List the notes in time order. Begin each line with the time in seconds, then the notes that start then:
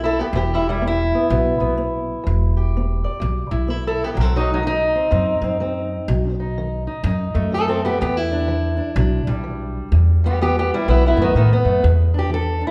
Already playing: B1 B3 E4
0.04 E4 A4
0.19 B3 G4
0.32 E1 E2
0.37 G4
0.53 G3 E4
0.69 G3 E4
0.82 B3
0.87 E4
1.15 B3
1.29 B1 E2 B3
1.60 B1 B3
1.78 B3
2.24 E1 E2
2.57 G4
2.77 B3
3.04 D5
3.20 B1 E2
3.51 B1 E4
3.68 B3 E4 A4
3.87 E4 A4
4.04 B3 G4
4.14 B1 B2 F#3
4.20 C4 A4
4.36 F#3 D#4
4.54 F#3 D#4
4.63 F#3 D#4
4.95 C4
5.11 F#2 B2 C4
5.42 F#2 C4
5.60 F#3 C4
6.08 B1 B2
6.40 D#4
6.58 D#3
6.87 D#4
7.04 F#2 D#4
7.34 F#2 A3
7.52 D#3 C4 A4
7.68 C4 A4
7.85 B3 G4
7.98 E2 B3 G4
8.17 E4
8.32 D4
8.48 E3
8.77 D4
8.96 B1 B2 D4
9.27 B1 G3
9.44 E3
9.92 E2
10.24 G3 B3 G4
10.41 E3 B3 G4
10.59 B3 G4
10.74 G3 E4
10.86 B1 B2 B3
10.90 E4
11.06 B3 E4
11.16 F#2 A3
11.22 D#3 B3
11.35 A2 D#3 B3
11.53 B3
11.65 F#2 A3
11.83 E2
12.14 D4
12.19 G4
12.30 E3 A4
12.61 D4
12.67 E4